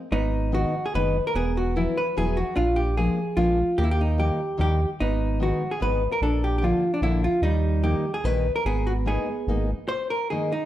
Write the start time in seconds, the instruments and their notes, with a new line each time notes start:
0.12 analog synth bass G#1, hollow-body jazz guitar B3 D#4
0.52 steel-string acoustic guitar D#3 G#3 B3 D#4, hollow-body jazz guitar F#4
0.86 hollow-body jazz guitar G#4
0.94 analog synth bass F#1, steel-string acoustic guitar D#3 G#3 B3 D#4, hollow-body jazz guitar B4
1.27 hollow-body jazz guitar A#4
1.35 analog synth bass E1, hollow-body jazz guitar B3 G#4
1.57 hollow-body jazz guitar F#4
1.76 steel-string acoustic guitar E3 F#3 B3 E4, hollow-body jazz guitar E4
1.98 hollow-body jazz guitar B4
2.17 analog synth bass E1, steel-string acoustic guitar E3 F#3 B3 E4, hollow-body jazz guitar G#4
2.37 hollow-body jazz guitar F#4
2.56 analog synth bass A#1, hollow-body jazz guitar D4 F4
2.76 hollow-body jazz guitar G4
2.97 steel-string acoustic guitar F3 G#3 A#3 D4, hollow-body jazz guitar G#4
3.37 analog synth bass A#1, steel-string acoustic guitar F3 G#3 A#3 D4, hollow-body jazz guitar F4
3.78 analog synth bass D#2, hollow-body jazz guitar A#3 G4
3.84 hollow-body jazz guitar E4
3.91 hollow-body jazz guitar G4
4.01 hollow-body jazz guitar D#4
4.18 steel-string acoustic guitar D#3 G3 A#3 D#4, hollow-body jazz guitar G4
4.57 analog synth bass D#2, steel-string acoustic guitar D#3 G3 A#3 D#4, hollow-body jazz guitar G4
5.00 analog synth bass G#1, hollow-body jazz guitar B3 D#4
5.40 steel-string acoustic guitar D#3 G#3 B3 D#4, hollow-body jazz guitar F#4
5.71 hollow-body jazz guitar G#4
5.80 analog synth bass G#1, steel-string acoustic guitar D#3 G#3 B3 D#4, hollow-body jazz guitar B4
6.12 hollow-body jazz guitar A#4
6.21 analog synth bass A#1, hollow-body jazz guitar D4 A4
6.44 hollow-body jazz guitar G4
6.58 steel-string acoustic guitar D3 F3, hollow-body jazz guitar G4
6.63 steel-string acoustic guitar A#3 D4, hollow-body jazz guitar F4
6.94 hollow-body jazz guitar D4
7.02 analog synth bass A#1, steel-string acoustic guitar D3 F3 A#3 D4, hollow-body jazz guitar E4
7.24 hollow-body jazz guitar F4
7.42 analog synth bass D#2, hollow-body jazz guitar G3 D#4
7.83 steel-string acoustic guitar D#3 G3 A#3 D#4, hollow-body jazz guitar G4
8.14 hollow-body jazz guitar G#4
8.24 analog synth bass A#1, steel-string acoustic guitar D#3 G3 A#3 D#4, hollow-body jazz guitar B4
8.56 hollow-body jazz guitar A#4
8.65 analog synth bass G#1, hollow-body jazz guitar B3 G#4
8.87 hollow-body jazz guitar F#4
9.06 steel-string acoustic guitar G#3 A#3 B3 D#4, hollow-body jazz guitar B3 G#4
9.47 analog synth bass G#1, steel-string acoustic guitar G#3 A#3 B3 D#4
9.88 hollow-body jazz guitar C5
10.10 hollow-body jazz guitar A#4
10.30 steel-string acoustic guitar D#3 G#3 A#3 D#4, hollow-body jazz guitar G#4
10.52 hollow-body jazz guitar D#4